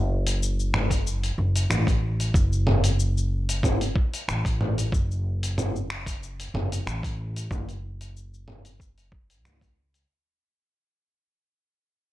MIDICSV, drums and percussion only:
0, 0, Header, 1, 2, 480
1, 0, Start_track
1, 0, Key_signature, 3, "minor"
1, 0, Tempo, 645161
1, 1746, Time_signature, 4, 2, 24, 8
1, 9024, End_track
2, 0, Start_track
2, 0, Title_t, "Drums"
2, 198, Note_on_c, 9, 46, 57
2, 203, Note_on_c, 9, 69, 69
2, 272, Note_off_c, 9, 46, 0
2, 278, Note_off_c, 9, 69, 0
2, 318, Note_on_c, 9, 69, 57
2, 392, Note_off_c, 9, 69, 0
2, 443, Note_on_c, 9, 69, 33
2, 517, Note_off_c, 9, 69, 0
2, 550, Note_on_c, 9, 26, 71
2, 550, Note_on_c, 9, 45, 78
2, 624, Note_off_c, 9, 26, 0
2, 624, Note_off_c, 9, 45, 0
2, 673, Note_on_c, 9, 36, 60
2, 677, Note_on_c, 9, 46, 53
2, 683, Note_on_c, 9, 69, 69
2, 747, Note_off_c, 9, 36, 0
2, 752, Note_off_c, 9, 46, 0
2, 757, Note_off_c, 9, 69, 0
2, 795, Note_on_c, 9, 69, 61
2, 870, Note_off_c, 9, 69, 0
2, 919, Note_on_c, 9, 46, 42
2, 924, Note_on_c, 9, 69, 34
2, 993, Note_off_c, 9, 46, 0
2, 999, Note_off_c, 9, 69, 0
2, 1158, Note_on_c, 9, 46, 51
2, 1163, Note_on_c, 9, 69, 65
2, 1232, Note_off_c, 9, 46, 0
2, 1237, Note_off_c, 9, 69, 0
2, 1269, Note_on_c, 9, 26, 75
2, 1269, Note_on_c, 9, 45, 81
2, 1274, Note_on_c, 9, 69, 58
2, 1343, Note_off_c, 9, 26, 0
2, 1343, Note_off_c, 9, 45, 0
2, 1349, Note_off_c, 9, 69, 0
2, 1391, Note_on_c, 9, 36, 109
2, 1398, Note_on_c, 9, 46, 40
2, 1404, Note_on_c, 9, 69, 32
2, 1466, Note_off_c, 9, 36, 0
2, 1473, Note_off_c, 9, 46, 0
2, 1478, Note_off_c, 9, 69, 0
2, 1636, Note_on_c, 9, 46, 48
2, 1642, Note_on_c, 9, 69, 68
2, 1711, Note_off_c, 9, 46, 0
2, 1716, Note_off_c, 9, 69, 0
2, 1743, Note_on_c, 9, 36, 117
2, 1751, Note_on_c, 9, 69, 52
2, 1817, Note_off_c, 9, 36, 0
2, 1825, Note_off_c, 9, 69, 0
2, 1879, Note_on_c, 9, 69, 30
2, 1954, Note_off_c, 9, 69, 0
2, 1984, Note_on_c, 9, 45, 89
2, 2059, Note_off_c, 9, 45, 0
2, 2111, Note_on_c, 9, 46, 54
2, 2117, Note_on_c, 9, 69, 67
2, 2186, Note_off_c, 9, 46, 0
2, 2191, Note_off_c, 9, 69, 0
2, 2229, Note_on_c, 9, 69, 54
2, 2303, Note_off_c, 9, 69, 0
2, 2362, Note_on_c, 9, 69, 31
2, 2436, Note_off_c, 9, 69, 0
2, 2596, Note_on_c, 9, 46, 57
2, 2602, Note_on_c, 9, 69, 67
2, 2671, Note_off_c, 9, 46, 0
2, 2676, Note_off_c, 9, 69, 0
2, 2702, Note_on_c, 9, 36, 66
2, 2708, Note_on_c, 9, 45, 88
2, 2713, Note_on_c, 9, 69, 54
2, 2777, Note_off_c, 9, 36, 0
2, 2782, Note_off_c, 9, 45, 0
2, 2788, Note_off_c, 9, 69, 0
2, 2836, Note_on_c, 9, 46, 45
2, 2841, Note_on_c, 9, 69, 30
2, 2910, Note_off_c, 9, 46, 0
2, 2916, Note_off_c, 9, 69, 0
2, 2943, Note_on_c, 9, 36, 98
2, 3017, Note_off_c, 9, 36, 0
2, 3077, Note_on_c, 9, 46, 54
2, 3082, Note_on_c, 9, 69, 60
2, 3151, Note_off_c, 9, 46, 0
2, 3156, Note_off_c, 9, 69, 0
2, 3189, Note_on_c, 9, 26, 77
2, 3195, Note_on_c, 9, 69, 53
2, 3264, Note_off_c, 9, 26, 0
2, 3269, Note_off_c, 9, 69, 0
2, 3310, Note_on_c, 9, 36, 97
2, 3317, Note_on_c, 9, 46, 42
2, 3322, Note_on_c, 9, 69, 30
2, 3385, Note_off_c, 9, 36, 0
2, 3391, Note_off_c, 9, 46, 0
2, 3397, Note_off_c, 9, 69, 0
2, 3428, Note_on_c, 9, 45, 84
2, 3502, Note_off_c, 9, 45, 0
2, 3557, Note_on_c, 9, 46, 53
2, 3562, Note_on_c, 9, 69, 65
2, 3631, Note_off_c, 9, 46, 0
2, 3637, Note_off_c, 9, 69, 0
2, 3663, Note_on_c, 9, 36, 120
2, 3676, Note_on_c, 9, 69, 50
2, 3737, Note_off_c, 9, 36, 0
2, 3751, Note_off_c, 9, 69, 0
2, 3805, Note_on_c, 9, 69, 30
2, 3879, Note_off_c, 9, 69, 0
2, 4041, Note_on_c, 9, 46, 57
2, 4046, Note_on_c, 9, 69, 69
2, 4115, Note_off_c, 9, 46, 0
2, 4120, Note_off_c, 9, 69, 0
2, 4151, Note_on_c, 9, 45, 88
2, 4156, Note_on_c, 9, 69, 55
2, 4225, Note_off_c, 9, 45, 0
2, 4230, Note_off_c, 9, 69, 0
2, 4285, Note_on_c, 9, 69, 30
2, 4359, Note_off_c, 9, 69, 0
2, 4391, Note_on_c, 9, 26, 82
2, 4466, Note_off_c, 9, 26, 0
2, 4512, Note_on_c, 9, 36, 61
2, 4516, Note_on_c, 9, 46, 59
2, 4521, Note_on_c, 9, 69, 62
2, 4587, Note_off_c, 9, 36, 0
2, 4590, Note_off_c, 9, 46, 0
2, 4596, Note_off_c, 9, 69, 0
2, 4636, Note_on_c, 9, 69, 55
2, 4710, Note_off_c, 9, 69, 0
2, 4759, Note_on_c, 9, 46, 45
2, 4765, Note_on_c, 9, 69, 31
2, 4834, Note_off_c, 9, 46, 0
2, 4839, Note_off_c, 9, 69, 0
2, 4871, Note_on_c, 9, 45, 86
2, 4946, Note_off_c, 9, 45, 0
2, 5001, Note_on_c, 9, 46, 59
2, 5007, Note_on_c, 9, 69, 67
2, 5076, Note_off_c, 9, 46, 0
2, 5081, Note_off_c, 9, 69, 0
2, 5113, Note_on_c, 9, 26, 76
2, 5118, Note_on_c, 9, 69, 55
2, 5187, Note_off_c, 9, 26, 0
2, 5193, Note_off_c, 9, 69, 0
2, 5233, Note_on_c, 9, 36, 92
2, 5241, Note_on_c, 9, 46, 46
2, 5246, Note_on_c, 9, 69, 32
2, 5307, Note_off_c, 9, 36, 0
2, 5315, Note_off_c, 9, 46, 0
2, 5320, Note_off_c, 9, 69, 0
2, 5479, Note_on_c, 9, 46, 58
2, 5484, Note_on_c, 9, 69, 66
2, 5553, Note_off_c, 9, 46, 0
2, 5559, Note_off_c, 9, 69, 0
2, 5586, Note_on_c, 9, 36, 116
2, 5589, Note_on_c, 9, 45, 78
2, 5594, Note_on_c, 9, 69, 53
2, 5660, Note_off_c, 9, 36, 0
2, 5663, Note_off_c, 9, 45, 0
2, 5669, Note_off_c, 9, 69, 0
2, 5718, Note_on_c, 9, 46, 30
2, 5724, Note_on_c, 9, 69, 30
2, 5793, Note_off_c, 9, 46, 0
2, 5798, Note_off_c, 9, 69, 0
2, 5958, Note_on_c, 9, 46, 63
2, 5964, Note_on_c, 9, 69, 66
2, 6033, Note_off_c, 9, 46, 0
2, 6038, Note_off_c, 9, 69, 0
2, 6075, Note_on_c, 9, 69, 55
2, 6150, Note_off_c, 9, 69, 0
2, 6204, Note_on_c, 9, 69, 31
2, 6279, Note_off_c, 9, 69, 0
2, 6307, Note_on_c, 9, 45, 86
2, 6381, Note_off_c, 9, 45, 0
2, 6435, Note_on_c, 9, 46, 64
2, 6441, Note_on_c, 9, 69, 65
2, 6509, Note_off_c, 9, 46, 0
2, 6515, Note_off_c, 9, 69, 0
2, 6545, Note_on_c, 9, 36, 64
2, 6555, Note_on_c, 9, 69, 62
2, 6620, Note_off_c, 9, 36, 0
2, 6629, Note_off_c, 9, 69, 0
2, 6679, Note_on_c, 9, 46, 45
2, 6684, Note_on_c, 9, 69, 32
2, 6753, Note_off_c, 9, 46, 0
2, 6759, Note_off_c, 9, 69, 0
2, 6785, Note_on_c, 9, 36, 107
2, 6859, Note_off_c, 9, 36, 0
2, 6919, Note_on_c, 9, 46, 59
2, 6924, Note_on_c, 9, 69, 70
2, 6993, Note_off_c, 9, 46, 0
2, 6999, Note_off_c, 9, 69, 0
2, 7033, Note_on_c, 9, 26, 78
2, 7033, Note_on_c, 9, 45, 76
2, 7038, Note_on_c, 9, 69, 51
2, 7107, Note_off_c, 9, 26, 0
2, 7107, Note_off_c, 9, 45, 0
2, 7113, Note_off_c, 9, 69, 0
2, 7152, Note_on_c, 9, 36, 107
2, 7159, Note_on_c, 9, 46, 45
2, 7164, Note_on_c, 9, 69, 31
2, 7227, Note_off_c, 9, 36, 0
2, 7233, Note_off_c, 9, 46, 0
2, 7239, Note_off_c, 9, 69, 0
2, 7397, Note_on_c, 9, 46, 56
2, 7402, Note_on_c, 9, 69, 62
2, 7471, Note_off_c, 9, 46, 0
2, 7477, Note_off_c, 9, 69, 0
2, 9024, End_track
0, 0, End_of_file